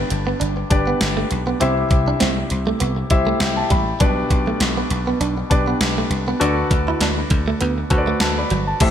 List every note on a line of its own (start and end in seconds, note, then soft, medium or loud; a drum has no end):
0.00 1.63 G2 medium
0.00 0.13 D4 medium
0.00 0.13 G4 medium
0.00 0.14 B4 medium
0.00 0.14 D5 medium
0.10 0.33 G1 medium
0.10 muted clean electric guitar stroke soft
0.10 closed hi-hat medium
0.27 0.38 B3 medium
0.40 0.63 G1 medium
0.40 0.53 D4 medium
0.40 closed hi-hat medium
0.57 muted clean electric guitar stroke soft
0.70 0.93 G1 medium
0.70 1.41 D4 medium
0.70 1.41 G4 medium
0.70 1.41 B4 medium
0.70 1.42 D5 medium
0.70 kick medium
0.70 closed hi-hat medium
0.87 0.98 B3 medium
1.01 1.23 G1 medium
1.01 snare loud
1.01 closed hi-hat medium
1.17 1.28 A3 medium
1.31 1.53 B1 medium
1.31 muted clean electric guitar stroke soft
1.31 closed hi-hat medium
1.47 1.58 B3 medium
1.60 1.83 C2 medium
1.60 2.47 C3 medium
1.60 1.74 C4 medium
1.60 2.54 E4 medium
1.60 2.54 G4 medium
1.60 2.54 C5 medium
1.60 2.54 E5 medium
1.60 closed hi-hat medium
1.90 2.12 C2 medium
1.90 muted clean electric guitar stroke soft
1.90 kick medium
1.90 closed hi-hat medium
2.08 2.18 D4 medium
2.20 2.43 C2 medium
2.20 2.33 C4 medium
2.20 snare medium
2.20 closed hi-hat medium
2.37 muted clean electric guitar stroke soft
2.50 2.73 C2 medium
2.50 closed hi-hat medium
2.67 2.78 A3 medium
2.80 3.03 C2 medium
2.80 2.94 B3 medium
2.80 closed hi-hat medium
2.96 muted clean electric guitar stroke soft
3.10 3.32 C2 loud
3.10 3.81 E4 medium
3.10 3.81 G4 medium
3.10 3.82 C5 medium
3.10 3.82 E5 medium
3.10 kick medium
3.10 closed hi-hat medium
3.27 3.38 A3 medium
3.40 3.62 C2 medium
3.40 3.56 G5 medium
3.40 snare loud
3.40 closed hi-hat medium
3.57 3.70 A5 medium
3.70 3.92 A1 medium
3.70 3.84 G3 medium
3.70 3.99 B5 medium
3.70 kick medium
3.70 closed hi-hat medium
4.00 4.22 B1 loud
4.00 4.87 B2 medium
4.00 4.14 G3 medium
4.00 4.93 D4 medium
4.00 4.94 G4 medium
4.00 4.94 B4 medium
4.00 4.94 D5 medium
4.00 kick loud
4.00 closed hi-hat medium
4.30 4.52 B1 loud
4.30 muted clean electric guitar stroke soft
4.30 kick medium
4.30 closed hi-hat medium
4.47 4.58 A3 medium
4.60 4.82 B1 loud
4.60 snare medium
4.60 closed hi-hat medium
4.77 4.88 B3 medium
4.90 5.12 B1 loud
4.90 muted clean electric guitar stroke soft
4.90 closed hi-hat medium
5.07 5.18 B3 medium
5.20 5.42 B1 medium
5.20 5.34 D4 medium
5.20 closed hi-hat medium
5.38 muted clean electric guitar stroke soft
5.50 5.73 B1 medium
5.50 6.21 D4 medium
5.50 6.21 G4 medium
5.50 6.21 B4 medium
5.50 6.22 D5 medium
5.50 kick medium
5.50 closed hi-hat medium
5.68 5.78 B3 medium
5.81 6.02 B1 medium
5.81 snare loud
5.81 closed hi-hat medium
5.98 6.09 A3 medium
6.10 6.32 C2 medium
6.10 muted clean electric guitar stroke soft
6.10 closed hi-hat medium
6.28 6.38 B3 medium
6.40 6.62 D2 loud
6.40 7.27 D3 medium
6.40 6.54 D4 medium
6.40 7.33 F#4 medium
6.40 7.33 A4 medium
6.40 7.34 B4 medium
6.40 7.34 D5 medium
6.40 closed hi-hat medium
6.71 6.92 D2 loud
6.71 muted clean electric guitar stroke soft
6.71 kick medium
6.71 closed hi-hat medium
6.88 6.99 E4 medium
7.01 7.23 D2 medium
7.01 7.15 D4 medium
7.01 snare medium
7.01 closed hi-hat medium
7.18 muted clean electric guitar stroke soft
7.30 7.52 D2 medium
7.30 kick medium
7.30 closed hi-hat medium
7.48 7.58 A3 medium
7.61 7.83 D2 medium
7.61 7.74 B3 medium
7.61 closed hi-hat medium
7.78 muted clean electric guitar stroke soft
7.90 8.13 D2 medium
7.90 8.61 F#4 medium
7.90 8.61 A4 medium
7.90 8.61 B4 medium
7.90 7.98 C5 medium
7.90 kick medium
7.90 closed hi-hat medium
7.98 8.24 D5 medium
8.07 8.18 A3 medium
8.20 8.42 D2 medium
8.20 8.37 A5 medium
8.20 snare loud
8.20 closed hi-hat medium
8.38 8.66 D5 medium
8.38 8.66 B5 medium
8.50 8.72 G1 medium
8.50 8.64 F#3 medium
8.50 closed hi-hat medium
8.67 8.91 A5 medium
8.80 8.91 A1 loud
8.80 8.91 A2 medium
8.80 8.91 A3 medium
8.80 8.91 G4 medium
8.80 8.91 A4 medium
8.80 8.91 C5 medium
8.80 8.91 E5 medium
8.80 kick loud
8.80 closed hi-hat medium
8.80 crash medium